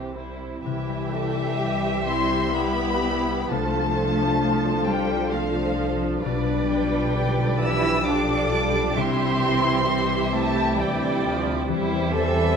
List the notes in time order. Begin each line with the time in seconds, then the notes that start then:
Already playing: C2 C3 E3 C4 E4 G4 C5
0.16 G3 C4 E4 C5
0.64 C2 C3 E3 G3 E4 G4 E5
0.89 G3
1.11 E3 C4 A4 E5
1.36 E4
1.60 G3 G4
1.83 C5
2.06 C4 E4 E5 C6
2.31 G5
2.53 B3 E4 G4 E5 B5
2.78 C5
3.02 E4
3.27 C4
3.48 C2 C3 F3 A3 D4 F4 A4 C5 A5
3.75 C4
3.93 A4
3.97 D4
4.21 F4
4.41 F3 D4 A4
4.65 D5
4.87 G3 F5 G5
5.11 D5
5.31 F3 A3 C5 F5
5.56 D5
5.77 F3 F4
6.02 D4
6.23 B1 B2 G3 D4 B4 D5
6.47 B3
6.69 G3 D4 G5
6.94 F4
7.15 D3 G4 D5
7.39 D5
7.61 E3 E4 F5 E6
7.84 G5
8.05 F3 D4 A4 D5 F5 D6
8.29 D5
8.51 G3 F4
8.74 D4
8.95 C2 C3 E3 G3 C4 E4 G4 E5 C6
9.19 G3
9.41 C4 E4
9.64 E4
9.87 E4 G4 E5
10.10 C5
10.33 A3 E5 A5
10.56 G5
10.77 D2 E3 G3 D5 E5 G5
11.01 C5
11.23 F3 E4
11.46 C4
11.68 E2 E3 G3 E4 G4 C5
11.90 A#3
12.12 E3 C4 A4 E5
12.35 G4